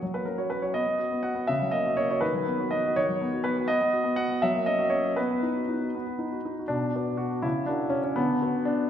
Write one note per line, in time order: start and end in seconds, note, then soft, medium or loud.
0.02 0.75 F#3 soft
0.14 0.35 A#3 soft
0.14 0.27 B4 soft
0.25 0.47 C#4 soft
0.25 0.39 A#4 soft
0.38 0.59 F#4 soft
0.38 0.51 C#5 soft
0.50 0.71 C#4 soft
0.50 0.63 B4 medium
0.62 0.76 F#4 soft
0.62 0.76 C#5 medium
0.74 0.85 B3 soft
0.74 1.24 D#5 medium
0.87 1.07 B3 soft
0.99 1.20 F#4 soft
1.12 1.32 B3 soft
1.23 1.44 F#4 soft
1.23 1.49 F#5 medium
1.35 1.49 B3 soft
1.47 2.21 C#3 soft
1.47 1.73 E5 medium
1.61 1.81 F#3 soft
1.71 1.93 A#3 soft
1.71 1.97 D#5 medium
1.86 2.06 F#4 soft
1.97 2.18 A#3 soft
1.97 2.09 C#5 medium
2.10 2.23 F#4 soft
2.10 2.23 C#5 medium
2.21 2.96 D#3 soft
2.21 2.71 B4 medium
2.34 2.54 F#3 soft
2.46 2.67 B3 soft
2.60 2.79 F#4 soft
2.71 2.92 B3 soft
2.71 2.96 D#5 medium
2.85 3.05 F#4 soft
2.96 3.67 D#3 soft
2.96 3.45 C#5 medium
3.09 3.28 F#3 soft
3.21 3.40 B3 soft
3.33 3.52 F#4 soft
3.44 3.64 B3 soft
3.44 3.68 B4 medium
3.58 3.69 F#4 soft
3.68 3.80 B3 medium
3.68 4.17 D#5 medium
3.81 4.01 B3 soft
3.93 4.13 F#4 soft
4.04 4.24 B3 soft
4.16 4.37 F#4 soft
4.16 4.42 F#5 medium
4.29 4.42 B3 soft
4.42 5.16 F#3 medium
4.42 4.67 E5 medium
4.55 4.74 A#3 soft
4.66 4.87 C#4 soft
4.66 4.91 D#5 medium
4.79 4.99 F#4 soft
4.90 5.12 C#4 soft
4.90 5.16 C#5 medium
5.04 5.17 F#4 soft
5.16 5.29 B3 soft
5.16 6.45 B4 medium
5.30 5.51 B3 soft
5.43 5.64 D#4 soft
5.56 5.77 F#4 soft
5.69 5.89 D#4 soft
5.81 6.02 F#4 soft
5.95 6.05 B3 soft
6.07 6.28 B3 soft
6.19 6.40 D#4 soft
6.32 6.53 F#4 soft
6.45 6.66 D#4 soft
6.59 6.71 F#4 soft
6.68 6.94 B2 soft
6.68 7.18 D4 medium
6.95 7.16 F#4 soft
6.95 7.40 B4 soft
6.95 7.40 D5 soft
7.17 7.43 F#4 medium
7.42 7.67 C#3 soft
7.42 7.67 E4 medium
7.66 7.92 D4 medium
7.66 8.12 F#4 soft
7.66 8.13 A#4 soft
7.66 8.13 F#5 soft
7.90 8.02 C#4 medium
8.04 8.16 C#4 medium
8.16 8.41 D3 soft
8.16 8.65 B3 medium
8.42 8.90 F#4 soft
8.42 8.90 B4 soft
8.42 8.90 F#5 soft
8.65 8.90 D4 medium